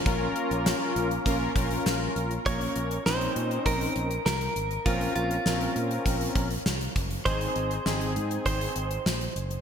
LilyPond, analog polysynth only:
\new Staff \with { instrumentName = "Analog polysynth" } { \time 4/4 \key bes \minor \tempo 4 = 100 <des' f' bes'>4. r8 <des' f' bes'>8 <des' f' bes'>4. | <bes des' bes'>4 <c' des' ees'>4. r4. | <c' des' bes'>4 <c' des' bes'>4. r4. | <c' ees' aes'>4 <c' ees' aes'>4. r4. | }